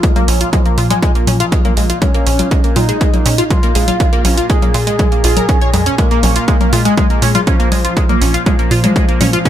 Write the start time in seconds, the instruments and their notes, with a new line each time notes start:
Already playing: synth drone A#2, analog synth lead F3
0.03 synth arpeggio sound G#3, kick, closed hi-hat
0.16 synth arpeggio sound A#3, closed hi-hat, low conga
0.28 analog synth bass A#1, synth arpeggio sound C#4, open hi-hat
0.41 synth arpeggio sound F4, closed hi-hat
0.53 analog synth lead F3, synth arpeggio sound G#3, kick, closed hi-hat, low conga
0.66 synth arpeggio sound A#3, closed hi-hat
0.78 analog synth bass A#2, synth arpeggio sound F4, open hi-hat
0.90 synth arpeggio sound G#3, closed hi-hat, low conga
1.03 synth arpeggio sound G#3, kick, closed hi-hat
1.15 synth arpeggio sound A#3, closed hi-hat
1.27 analog synth bass A#2, synth arpeggio sound C#4, open hi-hat, low conga
1.40 synth arpeggio sound F4, closed hi-hat
1.52 synth arpeggio sound G#3, kick, closed hi-hat
1.65 synth arpeggio sound A#3, closed hi-hat, low conga
1.77 analog synth bass A#1, synth arpeggio sound G#3, open hi-hat
1.90 synth arpeggio sound F4, closed hi-hat
2.01 synth arpeggio sound G#3, analog synth lead C#4, kick, closed hi-hat, low conga
2.14 synth arpeggio sound A#3, closed hi-hat
2.27 analog synth bass A#1, synth arpeggio sound C#4, open hi-hat
2.39 synth arpeggio sound F4, closed hi-hat, low conga
2.51 synth arpeggio sound G#3, kick, closed hi-hat
2.64 synth arpeggio sound A#3, closed hi-hat
2.76 analog synth bass A#2, analog synth lead D#4, synth arpeggio sound F4, open hi-hat, low conga
2.89 synth arpeggio sound G#3, closed hi-hat
3.01 synth arpeggio sound G#3, kick, closed hi-hat
3.13 synth arpeggio sound A#3, closed hi-hat, low conga
3.26 analog synth bass A#2, synth arpeggio sound C#4, open hi-hat
3.38 synth arpeggio sound F4, closed hi-hat
3.50 synth arpeggio sound G#3, analog synth lead F4, kick, closed hi-hat, low conga
3.63 synth arpeggio sound A#3, closed hi-hat
3.75 analog synth bass A#1, synth arpeggio sound G#3, open hi-hat
3.88 synth arpeggio sound F4, closed hi-hat, low conga
4.00 synth arpeggio sound G#3, kick, closed hi-hat
4.13 synth arpeggio sound A#3, closed hi-hat
4.25 analog synth bass A#1, synth arpeggio sound C#4, open hi-hat, low conga
4.37 synth arpeggio sound F4, closed hi-hat
4.50 synth arpeggio sound G#3, analog synth lead G#4, kick, closed hi-hat
4.62 synth arpeggio sound A#3, closed hi-hat, low conga
4.74 analog synth bass A#2, synth arpeggio sound F4, open hi-hat
4.87 synth arpeggio sound G#3, closed hi-hat
4.99 synth arpeggio sound G#3, kick, closed hi-hat, low conga
5.12 synth arpeggio sound A#3, closed hi-hat
5.24 analog synth bass A#1, synth arpeggio sound F4, open hi-hat
5.37 synth arpeggio sound A#4, closed hi-hat, low conga
5.49 synth arpeggio sound C#4, kick, closed hi-hat
5.61 synth arpeggio sound C#5, closed hi-hat
5.74 analog synth bass F2, synth arpeggio sound G#3, open hi-hat, low conga
5.86 synth arpeggio sound C#4, closed hi-hat
5.98 synth arpeggio sound G#3, analog synth lead A#3, kick, closed hi-hat
6.11 synth arpeggio sound A#3, closed hi-hat
6.23 analog synth bass A#1, synth arpeggio sound C#4, open hi-hat, low conga
6.36 synth arpeggio sound F4, closed hi-hat
6.48 synth arpeggio sound G#3, kick, closed hi-hat
6.61 synth arpeggio sound A#3, closed hi-hat, low conga
6.73 analog synth bass A#2, analog synth lead G#3, synth arpeggio sound F4, open hi-hat
6.85 synth arpeggio sound G#3, closed hi-hat
6.97 synth arpeggio sound G#3, kick, closed hi-hat, low conga
7.10 synth arpeggio sound A#3, closed hi-hat
7.22 analog synth bass A#2, synth arpeggio sound C#4, open hi-hat
7.35 synth arpeggio sound F4, closed hi-hat, low conga
7.47 analog synth lead F3, synth arpeggio sound C#4, kick, closed hi-hat
7.60 synth arpeggio sound A#3, closed hi-hat
7.72 analog synth bass A#1, synth arpeggio sound G#3, open hi-hat, low conga
7.85 synth arpeggio sound F4, closed hi-hat
7.97 synth arpeggio sound G#3, kick, closed hi-hat
8.09 synth arpeggio sound A#3, closed hi-hat, low conga
8.21 analog synth bass A#1, synth arpeggio sound C#4, open hi-hat
8.34 synth arpeggio sound F4, closed hi-hat
8.46 analog synth lead F3, synth arpeggio sound G#3, kick, closed hi-hat, low conga
8.59 synth arpeggio sound A#3, closed hi-hat
8.71 analog synth bass A#2, synth arpeggio sound F4, open hi-hat
8.84 synth arpeggio sound G#3, closed hi-hat, low conga
8.96 synth arpeggio sound G#3, kick, closed hi-hat
9.09 synth arpeggio sound A#3, closed hi-hat
9.21 analog synth bass A#2, synth arpeggio sound C#4, open hi-hat, low conga
9.33 synth arpeggio sound F4, closed hi-hat
9.45 synth arpeggio sound C#4, kick, closed hi-hat